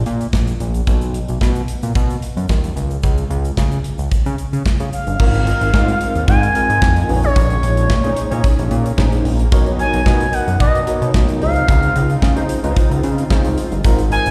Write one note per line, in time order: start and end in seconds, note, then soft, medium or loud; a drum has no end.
0.06 0.27 A#2 medium
0.06 closed hi-hat medium
0.06 shaker soft
0.21 closed hi-hat soft
0.21 shaker soft
0.33 0.54 A#1 medium
0.33 kick loud
0.33 snare medium
0.33 shaker medium
0.47 closed hi-hat medium
0.47 shaker soft
0.60 0.81 A#1 medium
0.60 closed hi-hat medium
0.60 shaker medium
0.74 closed hi-hat soft
0.74 shaker medium
0.87 1.19 B1 loud
0.87 kick loud
0.87 closed hi-hat medium
0.87 shaker medium
1.01 closed hi-hat soft
1.01 shaker medium
1.14 closed hi-hat medium
1.28 1.39 B1 medium
1.28 closed hi-hat medium
1.28 shaker medium
1.41 1.62 B2 medium
1.41 kick medium
1.41 snare loud
1.41 shaker medium
1.55 closed hi-hat soft
1.55 shaker medium
1.68 closed hi-hat medium
1.82 1.93 A#2 medium
1.82 closed hi-hat medium
1.82 shaker medium
1.95 2.16 B2 loud
1.95 kick loud
1.95 closed hi-hat medium
1.95 shaker medium
2.10 closed hi-hat medium
2.10 shaker medium
2.22 closed hi-hat medium
2.22 shaker soft
2.37 2.46 F#2 medium
2.37 closed hi-hat medium
2.37 shaker soft
2.49 2.70 D#2 medium
2.49 kick loud
2.49 snare loud
2.49 shaker medium
2.64 closed hi-hat medium
2.64 shaker soft
2.76 2.97 C#2 loud
2.76 closed hi-hat medium
2.76 shaker medium
2.90 closed hi-hat soft
2.90 shaker medium
3.03 3.24 C#2 loud
3.03 kick loud
3.03 closed hi-hat medium
3.03 shaker medium
3.17 closed hi-hat soft
3.17 shaker medium
3.30 3.51 C#2 loud
3.30 closed hi-hat medium
3.45 closed hi-hat medium
3.45 shaker medium
3.57 3.78 C#3 loud
3.57 kick medium
3.57 snare loud
3.57 shaker medium
3.71 closed hi-hat soft
3.71 shaker soft
3.84 closed hi-hat medium
3.98 4.09 C#2 medium
3.98 closed hi-hat medium
3.98 shaker medium
4.12 kick loud
4.12 closed hi-hat medium
4.12 shaker medium
4.26 4.36 C#3 loud
4.26 closed hi-hat medium
4.26 shaker medium
4.38 closed hi-hat medium
4.38 shaker soft
4.53 4.63 C#3 loud
4.53 closed hi-hat medium
4.53 shaker medium
4.65 kick loud
4.65 snare loud
4.65 shaker medium
4.80 4.90 C#3 medium
4.80 closed hi-hat medium
4.80 shaker soft
4.93 6.24 F5 loud
4.93 closed hi-hat medium
4.93 shaker soft
5.07 5.17 G1 medium
5.07 closed hi-hat soft
5.07 shaker soft
5.19 5.52 G#1 loud
5.19 9.48 G#3 medium
5.19 5.41 C4 medium
5.19 7.07 C4 medium
5.19 5.41 D#4 medium
5.19 5.41 F4 medium
5.19 7.07 F4 loud
5.19 5.41 A#4 medium
5.19 kick loud
5.19 crash loud
5.34 closed hi-hat medium
5.47 5.68 C4 medium
5.47 5.68 D#4 medium
5.47 5.68 F4 medium
5.47 5.68 A#4 medium
5.47 closed hi-hat medium
5.61 5.71 G#1 loud
5.61 closed hi-hat medium
5.73 5.95 G#2 loud
5.73 6.37 C4 medium
5.73 6.38 D#4 medium
5.73 6.38 F4 medium
5.73 6.38 A#4 medium
5.73 kick loud
5.73 snare loud
5.88 closed hi-hat medium
6.01 closed hi-hat medium
6.15 6.25 D#2 medium
6.15 closed hi-hat medium
6.28 6.49 G#2 loud
6.28 7.19 G#5 loud
6.28 kick loud
6.28 closed hi-hat medium
6.43 closed hi-hat medium
6.54 7.09 C4 medium
6.54 7.08 D#4 medium
6.54 7.09 F4 medium
6.54 7.09 A#4 medium
6.54 closed hi-hat medium
6.70 6.79 G#2 medium
6.70 closed hi-hat medium
6.82 7.03 F2 medium
6.82 kick loud
6.82 snare loud
6.96 closed hi-hat medium
7.09 7.30 A#1 loud
7.09 11.38 A#3 medium
7.09 7.85 C#4 medium
7.09 9.50 C#4 medium
7.09 7.85 D#4 medium
7.09 7.85 G#4 medium
7.09 7.16 B4 medium
7.09 open hi-hat medium
7.16 7.88 C#5 medium
7.23 8.82 C#5 loud
7.23 closed hi-hat soft
7.36 7.57 A#1 loud
7.36 kick loud
7.36 closed hi-hat loud
7.50 closed hi-hat soft
7.63 7.91 A#1 loud
7.63 closed hi-hat medium
7.77 closed hi-hat medium
7.90 8.11 A#2 loud
7.90 kick loud
7.90 snare loud
8.04 8.25 C#4 loud
8.04 8.25 D#4 medium
8.04 8.25 G#4 medium
8.04 8.25 C5 loud
8.04 closed hi-hat medium
8.16 closed hi-hat loud
8.31 8.41 A#2 medium
8.31 8.84 C#4 loud
8.31 8.84 D#4 medium
8.31 8.84 G#4 medium
8.31 8.84 C#5 loud
8.31 closed hi-hat medium
8.44 kick loud
8.44 closed hi-hat medium
8.59 8.68 A#1 loud
8.59 closed hi-hat medium
8.71 8.92 A#2 loud
8.71 closed hi-hat medium
8.86 closed hi-hat medium
8.97 9.19 A#1 medium
8.97 9.41 C#4 medium
8.97 9.41 D#4 medium
8.97 9.41 G#4 medium
8.97 9.41 C5 loud
8.97 kick loud
8.97 snare loud
9.12 closed hi-hat medium
9.25 9.46 A#1 medium
9.25 open hi-hat medium
9.39 closed hi-hat soft
9.51 9.84 B1 loud
9.51 11.39 B3 medium
9.51 9.73 D#4 loud
9.51 13.81 D#4 loud
9.51 9.73 F#4 loud
9.51 9.74 A#4 medium
9.51 9.74 C#5 loud
9.51 kick loud
9.51 closed hi-hat loud
9.66 closed hi-hat soft
9.79 10.00 D#4 medium
9.79 10.01 F#4 medium
9.79 10.01 A#4 medium
9.79 10.01 C#5 medium
9.79 10.35 G#5 loud
9.79 closed hi-hat medium
9.93 10.03 B1 loud
9.93 closed hi-hat medium
10.05 10.27 B2 loud
10.05 10.70 D#4 medium
10.05 10.70 F#4 medium
10.05 10.70 A#4 medium
10.05 10.70 D#5 medium
10.05 kick loud
10.05 snare loud
10.20 closed hi-hat medium
10.33 10.59 F#5 loud
10.33 closed hi-hat loud
10.47 10.57 F#2 medium
10.47 closed hi-hat medium
10.60 10.81 B2 loud
10.60 11.10 D#5 medium
10.60 kick loud
10.60 closed hi-hat medium
10.75 closed hi-hat medium
10.87 11.40 D#4 medium
10.87 11.41 F#4 medium
10.87 11.41 A#4 medium
10.87 11.41 C#5 medium
10.87 closed hi-hat medium
11.02 11.11 B2 loud
11.02 closed hi-hat medium
11.14 11.43 B1 loud
11.14 kick loud
11.14 snare loud
11.28 closed hi-hat medium
11.41 11.62 C#2 loud
11.41 13.82 C#3 medium
11.41 14.31 C4 medium
11.41 12.17 D#4 medium
11.41 12.17 F4 medium
11.41 14.31 F4 medium
11.41 12.17 G#4 medium
11.41 12.17 C5 medium
11.41 12.46 F5 loud
11.41 open hi-hat medium
11.56 closed hi-hat medium
11.68 11.89 C#2 loud
11.68 kick loud
11.68 closed hi-hat loud
11.83 closed hi-hat soft
11.96 12.16 C#2 loud
11.96 closed hi-hat medium
12.10 closed hi-hat medium
12.22 12.43 C#3 loud
12.22 kick loud
12.22 snare loud
12.36 12.57 D#4 loud
12.36 12.57 F4 medium
12.36 12.58 G#4 loud
12.36 12.58 C5 loud
12.36 closed hi-hat medium
12.49 closed hi-hat loud
12.63 12.74 C#2 medium
12.63 13.16 D#4 loud
12.63 13.17 F4 medium
12.63 13.17 G#4 medium
12.63 12.70 B4 medium
12.63 closed hi-hat medium
12.71 13.20 C5 loud
12.76 kick loud
12.76 closed hi-hat medium
12.91 13.01 C#2 loud
12.91 closed hi-hat medium
13.03 13.24 C#3 loud
13.03 closed hi-hat medium
13.18 closed hi-hat medium
13.30 13.41 C#3 loud
13.30 13.73 D#4 loud
13.30 13.73 F4 medium
13.30 13.74 G#4 medium
13.30 13.74 C5 loud
13.30 kick loud
13.30 snare loud
13.45 13.55 C#2 loud
13.45 closed hi-hat medium
13.58 closed hi-hat medium
13.72 13.82 G1 medium
13.72 closed hi-hat soft
13.84 14.16 G#1 loud
13.84 14.31 G#3 medium
13.84 14.06 D#4 loud
13.84 14.06 F4 medium
13.84 14.06 A#4 medium
13.84 14.06 C5 medium
13.84 kick loud
13.84 closed hi-hat loud
13.84 shaker medium
13.99 closed hi-hat medium
13.99 shaker medium
14.11 14.31 D#4 medium
14.11 14.31 F4 medium
14.11 14.31 A#4 medium
14.11 14.31 C5 loud
14.11 14.31 G#5 loud
14.11 closed hi-hat medium
14.11 shaker medium
14.26 14.31 G#1 loud
14.26 closed hi-hat medium
14.26 shaker medium